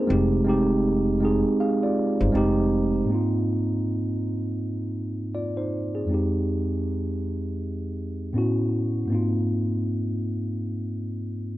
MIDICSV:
0, 0, Header, 1, 3, 480
1, 0, Start_track
1, 0, Tempo, 750000
1, 62, Time_signature, 4, 2, 24, 8
1, 7410, End_track
2, 0, Start_track
2, 0, Title_t, "Tine electric piano"
2, 0, Program_c, 0, 4
2, 0, Control_c, 0, 64, 127
2, 0, Note_on_c, 0, 58, 86
2, 0, Note_on_c, 0, 60, 49
2, 0, Note_on_c, 0, 62, 52
2, 0, Note_on_c, 0, 63, 56
2, 0, Note_on_c, 0, 65, 88
2, 0, Note_on_c, 0, 68, 59
2, 0, Note_on_c, 0, 70, 62
2, 0, Note_on_c, 0, 72, 65
2, 46, Note_on_c, 0, 56, 80
2, 56, Note_off_c, 0, 60, 0
2, 56, Note_on_c, 0, 60, 79
2, 66, Note_off_c, 0, 63, 0
2, 66, Note_on_c, 0, 63, 68
2, 70, Note_off_c, 0, 72, 0
2, 70, Control_c, 0, 64, 0
2, 72, Note_off_c, 0, 65, 0
2, 72, Note_off_c, 0, 70, 0
2, 73, Note_off_c, 0, 58, 0
2, 75, Note_off_c, 0, 62, 0
2, 76, Note_on_c, 0, 67, 89
2, 198, Note_off_c, 0, 68, 0
2, 202, Control_c, 0, 64, 127
2, 243, Note_off_c, 0, 56, 0
2, 248, Note_off_c, 0, 60, 0
2, 253, Note_off_c, 0, 63, 0
2, 258, Note_off_c, 0, 67, 0
2, 285, Note_on_c, 0, 56, 82
2, 296, Note_on_c, 0, 60, 73
2, 306, Note_on_c, 0, 63, 78
2, 316, Note_on_c, 0, 67, 97
2, 665, Note_off_c, 0, 56, 0
2, 671, Note_off_c, 0, 60, 0
2, 676, Note_off_c, 0, 63, 0
2, 681, Note_off_c, 0, 67, 0
2, 769, Note_on_c, 0, 56, 82
2, 779, Note_on_c, 0, 60, 69
2, 788, Note_on_c, 0, 63, 73
2, 799, Note_on_c, 0, 68, 87
2, 1022, Note_off_c, 0, 68, 0
2, 1025, Note_off_c, 0, 63, 0
2, 1025, Note_on_c, 0, 77, 62
2, 1029, Note_on_c, 0, 68, 54
2, 1164, Note_off_c, 0, 77, 0
2, 1166, Note_off_c, 0, 68, 0
2, 1172, Note_on_c, 0, 74, 69
2, 1176, Note_on_c, 0, 65, 56
2, 1399, Note_off_c, 0, 74, 0
2, 1401, Note_off_c, 0, 65, 0
2, 1411, Note_on_c, 0, 72, 62
2, 1416, Note_on_c, 0, 63, 56
2, 1476, Note_off_c, 0, 56, 0
2, 1481, Note_off_c, 0, 60, 0
2, 1487, Note_on_c, 0, 56, 89
2, 1498, Note_on_c, 0, 60, 81
2, 1501, Note_off_c, 0, 63, 0
2, 1509, Control_c, 0, 64, 0
2, 1509, Note_on_c, 0, 63, 82
2, 1517, Note_on_c, 0, 67, 102
2, 1633, Control_c, 0, 64, 127
2, 1638, Note_off_c, 0, 72, 0
2, 1901, Note_off_c, 0, 56, 0
2, 1906, Note_off_c, 0, 60, 0
2, 1912, Note_off_c, 0, 63, 0
2, 1916, Note_off_c, 0, 67, 0
2, 1952, Note_on_c, 0, 44, 64
2, 1967, Note_on_c, 0, 58, 53
2, 1982, Note_on_c, 0, 60, 55
2, 1991, Control_c, 0, 64, 0
2, 1997, Note_on_c, 0, 63, 57
2, 2012, Note_on_c, 0, 65, 73
2, 2097, Control_c, 0, 64, 127
2, 3396, Note_off_c, 0, 60, 0
2, 3404, Note_off_c, 0, 63, 0
2, 3412, Note_off_c, 0, 65, 0
2, 3422, Note_on_c, 0, 74, 56
2, 3425, Note_on_c, 0, 65, 47
2, 3562, Note_off_c, 0, 74, 0
2, 3564, Note_off_c, 0, 65, 0
2, 3566, Note_on_c, 0, 72, 59
2, 3572, Note_on_c, 0, 63, 48
2, 3796, Note_off_c, 0, 72, 0
2, 3799, Note_off_c, 0, 63, 0
2, 3808, Note_on_c, 0, 68, 56
2, 3813, Note_on_c, 0, 60, 44
2, 3861, Note_off_c, 0, 44, 0
2, 3869, Note_off_c, 0, 58, 0
2, 3871, Note_on_c, 0, 41, 64
2, 3887, Note_on_c, 0, 56, 55
2, 3894, Note_off_c, 0, 60, 0
2, 3902, Note_on_c, 0, 60, 58
2, 3911, Control_c, 0, 64, 0
2, 3916, Note_on_c, 0, 63, 57
2, 3931, Note_on_c, 0, 67, 65
2, 4022, Control_c, 0, 64, 127
2, 4037, Note_off_c, 0, 68, 0
2, 5301, Note_off_c, 0, 41, 0
2, 5309, Note_off_c, 0, 56, 0
2, 5316, Note_off_c, 0, 60, 0
2, 5324, Note_off_c, 0, 63, 0
2, 5331, Note_off_c, 0, 67, 0
2, 5332, Note_on_c, 0, 45, 62
2, 5338, Note_on_c, 0, 59, 63
2, 5347, Note_on_c, 0, 61, 67
2, 5351, Control_c, 0, 64, 0
2, 5354, Note_on_c, 0, 64, 60
2, 5363, Note_on_c, 0, 66, 79
2, 5460, Control_c, 0, 64, 127
2, 5795, Note_on_c, 0, 44, 63
2, 5809, Note_on_c, 0, 58, 61
2, 5817, Note_off_c, 0, 45, 0
2, 5820, Note_off_c, 0, 59, 0
2, 5824, Note_off_c, 0, 61, 0
2, 5825, Note_on_c, 0, 60, 63
2, 5828, Note_off_c, 0, 64, 0
2, 5829, Control_c, 0, 64, 0
2, 5832, Note_off_c, 0, 66, 0
2, 5840, Note_on_c, 0, 63, 60
2, 5854, Note_on_c, 0, 65, 66
2, 5945, Control_c, 0, 64, 127
2, 7410, Note_off_c, 0, 44, 0
2, 7410, Note_off_c, 0, 58, 0
2, 7410, Note_off_c, 0, 60, 0
2, 7410, Note_off_c, 0, 63, 0
2, 7410, Note_off_c, 0, 65, 0
2, 7410, End_track
3, 0, Start_track
3, 0, Title_t, "Upright bass"
3, 0, Program_c, 1, 32
3, 65, Note_on_c, 1, 29, 92
3, 906, Note_off_c, 1, 29, 0
3, 1412, Note_on_c, 1, 31, 90
3, 1491, Note_off_c, 1, 31, 0
3, 1504, Note_on_c, 1, 29, 81
3, 1920, Note_off_c, 1, 29, 0
3, 7410, End_track
0, 0, End_of_file